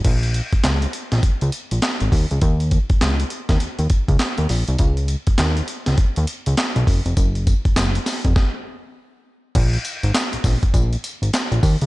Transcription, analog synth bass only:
X:1
M:4/4
L:1/16
Q:"Swing 16ths" 1/4=101
K:Abmix
V:1 name="Analog synth bass" clef=bass
B,,,3 z D,,2 z B,,, z D,, z B,,, z A,,, E,, D,, | E,,3 z D,,2 z E,, E,, E,, z D,, z E,, B,,, C,, | D,,3 z E,,2 z D,, z E,, z D,, z _C,, G,,, F,,, | G,,,3 z G,,,2 z F,,, z8 |
B,,,2 z A,,, z B,,, B,,, z B,,,2 z A,,, z B,,, E,, D,, |]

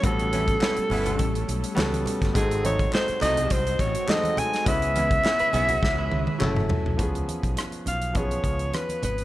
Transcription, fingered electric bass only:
X:1
M:4/4
L:1/16
Q:"Swing 16ths" 1/4=104
K:C#phr
V:1 name="Fingered electric bass" clef=bass
A,,,4 z2 =G,,,2 A,,,2 B,,, z C,,2 z F,,, | G,,,4 z2 ^B,,,2 B,,,2 A,,, z4 z | C,,4 z2 B,,,2 C,,2 C,, z F,,,2 z B,,, | C,,2 z B,,, z2 B,,,4 C,,2 z2 G,,,2 |]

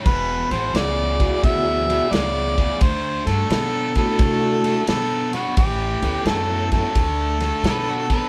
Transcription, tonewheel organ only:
X:1
M:4/4
L:1/8
Q:"Swing" 1/4=87
K:D
V:1 name="Tonewheel organ"
z3 [B,EF^Gd]3 z2 | z3 [A,DEFA]3 z2 | z [B,CEAg]3 z4 |]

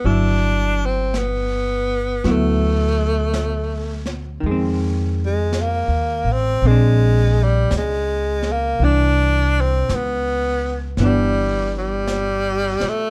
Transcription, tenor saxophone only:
X:1
M:4/4
L:1/16
Q:"Swing" 1/4=55
K:G
V:1 name="Tenor saxophone"
D2 C2 B,4 A,6 z2 | z2 _A,2 _B,2 C2 A,2 G,2 A,2 B,2 | D2 C2 B,3 z G,2 G,4 A,2 |]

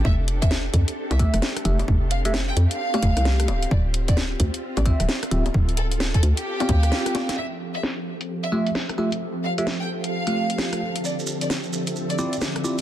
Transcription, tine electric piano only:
X:1
M:4/4
L:1/16
Q:"Swing 16ths" 1/4=131
K:F
V:1 name="Tine electric piano"
z8 z2 [A,Ge] z3 [A,Ge] z | z3 [A,Ge] z4 z [A,Gf]4- [A,Gf] z2 | z8 z2 [CFGe] z3 [CFGe] z | z8 z [CFGf]6- [CFGf] |
z8 z2 [A,FGe] z3 [A,FGe] z | z3 [A,FGe] z4 z [A,FGf]4- [A,FGf] z2 | z8 z2 [CEFGd] z3 [CEFGd] z |]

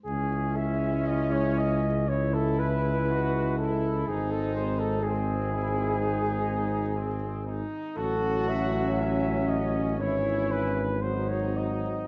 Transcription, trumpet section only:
X:1
M:4/4
L:1/8
Q:1/4=60
K:C#m
V:1 name="Trumpet section"
C4 E2 F E | D2 ^B, E D2 B, D | F2 C2 E2 D2 |]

